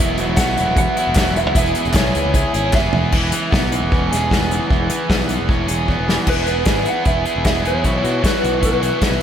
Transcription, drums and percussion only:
0.18 closed hi-hat
0.37 kick, snare, clap, closed hi-hat
0.57 closed hi-hat
0.77 kick, closed hi-hat
0.97 closed hi-hat
1.15 kick, snare, clap, closed hi-hat
1.27 closed hi-hat
1.36 closed hi-hat
1.55 kick, closed hi-hat
1.66 closed hi-hat
1.75 closed hi-hat
1.85 closed hi-hat
1.93 kick, snare, clap, closed hi-hat
2.15 closed hi-hat
2.34 kick, closed hi-hat
2.54 closed hi-hat
2.73 kick, snare, clap
2.93 floor tom
3.12 kick, crash
3.32 closed hi-hat
3.52 kick, snare
3.72 closed hi-hat
3.92 kick
4.13 snare, closed hi-hat
4.31 kick, snare
4.51 closed hi-hat
4.70 kick
4.90 closed hi-hat
5.10 kick, snare
5.29 closed hi-hat
5.49 kick
5.68 closed hi-hat
5.88 kick
6.09 snare
6.27 kick, crash
6.46 closed hi-hat
6.65 kick, snare, closed hi-hat
6.85 closed hi-hat
7.05 kick, closed hi-hat
7.25 closed hi-hat
7.45 kick, snare, closed hi-hat
7.65 closed hi-hat
7.84 kick, closed hi-hat
8.04 closed hi-hat
8.24 kick, snare, closed hi-hat
8.44 closed hi-hat
8.63 kick, closed hi-hat
8.83 closed hi-hat
9.02 kick, snare, closed hi-hat

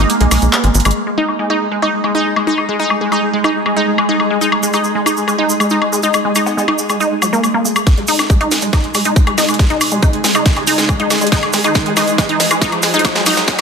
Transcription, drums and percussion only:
0.10 closed hi-hat, cabasa
0.21 closed hi-hat
0.31 open hi-hat, cabasa, high woodblock
0.42 closed hi-hat, cabasa
0.53 clap, closed hi-hat, cabasa, high woodblock
0.64 closed hi-hat
0.74 closed hi-hat, cabasa
0.80 closed hi-hat
0.85 closed hi-hat, cabasa, high woodblock
0.91 closed hi-hat
0.96 crash, high woodblock
1.28 high woodblock
1.50 high woodblock
1.82 high woodblock
2.04 high woodblock
2.36 high woodblock
2.58 high woodblock
2.90 high woodblock
3.12 high woodblock
3.44 high woodblock
3.66 high woodblock
3.98 high woodblock
4.20 high woodblock
4.42 cabasa
4.52 high woodblock
4.63 cabasa
4.73 cabasa, high woodblock
4.84 cabasa
5.06 cabasa, high woodblock
5.17 cabasa
5.28 cabasa, high woodblock
5.50 cabasa
5.60 cabasa, high woodblock
5.70 cabasa
5.82 high woodblock
5.93 cabasa
6.03 cabasa
6.14 cabasa, high woodblock
6.35 cabasa, high woodblock
6.47 cabasa
6.58 cabasa
6.68 high woodblock
6.78 cabasa
6.89 cabasa, high woodblock
7.00 cabasa
7.22 cabasa, high woodblock
7.33 cabasa
7.44 cabasa, high woodblock
7.65 cabasa
7.76 cabasa, high woodblock
7.87 kick, snare, closed hi-hat, cabasa, high woodblock
7.97 closed hi-hat
8.07 open hi-hat, cabasa
8.19 snare, closed hi-hat, cabasa, high woodblock
8.30 kick, closed hi-hat, cabasa
8.41 closed hi-hat, high woodblock
8.51 snare, open hi-hat, cabasa
8.61 closed hi-hat, cabasa
8.73 kick, snare, closed hi-hat, cabasa, high woodblock
8.84 closed hi-hat
8.94 open hi-hat, cabasa, high woodblock
9.04 closed hi-hat, cabasa
9.16 kick, closed hi-hat, cabasa
9.27 closed hi-hat, high woodblock
9.38 snare, open hi-hat, cabasa
9.49 closed hi-hat, cabasa, high woodblock
9.54 closed hi-hat
9.59 kick, snare, cabasa
9.70 closed hi-hat
9.81 open hi-hat, cabasa, high woodblock
9.91 closed hi-hat, cabasa
10.03 kick, closed hi-hat, cabasa, high woodblock
10.13 closed hi-hat
10.24 snare, open hi-hat, cabasa
10.35 closed hi-hat, cabasa, high woodblock
10.46 kick, snare, closed hi-hat, cabasa
10.56 closed hi-hat, high woodblock
10.67 open hi-hat, cabasa
10.78 snare, closed hi-hat, cabasa
10.89 kick, closed hi-hat, cabasa, high woodblock
11.00 closed hi-hat
11.10 snare, open hi-hat, cabasa, high woodblock
11.21 closed hi-hat, cabasa
11.27 closed hi-hat
11.32 kick, snare, closed hi-hat, cabasa
11.43 closed hi-hat, high woodblock
11.53 snare, open hi-hat, cabasa
11.64 closed hi-hat, cabasa, high woodblock
11.75 kick, snare, closed hi-hat, cabasa
11.86 closed hi-hat
11.97 snare, open hi-hat, cabasa, high woodblock
12.08 closed hi-hat, cabasa
12.18 kick, snare, closed hi-hat, cabasa, high woodblock
12.29 closed hi-hat
12.40 snare, open hi-hat, cabasa
12.50 closed hi-hat, cabasa, high woodblock
12.62 kick, snare, closed hi-hat, cabasa
12.72 closed hi-hat, high woodblock
12.82 snare, open hi-hat, cabasa
12.94 closed hi-hat, cabasa
12.99 closed hi-hat
13.04 kick, snare, cabasa, high woodblock
13.15 snare, closed hi-hat
13.26 snare, open hi-hat, cabasa, high woodblock
13.37 snare, closed hi-hat, cabasa
13.48 kick, snare, closed hi-hat, cabasa

